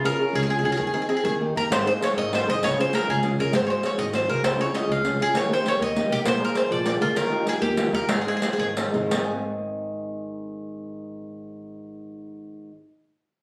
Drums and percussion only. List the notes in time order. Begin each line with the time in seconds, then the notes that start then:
1.72 riq
2.02 riq
2.33 riq
2.63 riq
2.93 riq
3.23 riq
3.53 riq
3.83 riq
4.13 riq
4.44 riq
4.59 riq
4.74 riq
5.05 riq
5.20 riq
5.35 riq
5.66 riq
5.96 riq
6.25 riq
6.55 riq
6.86 riq
7.16 riq
7.47 riq
7.77 riq
8.09 riq
8.42 riq
8.77 riq
8.94 riq
9.11 riq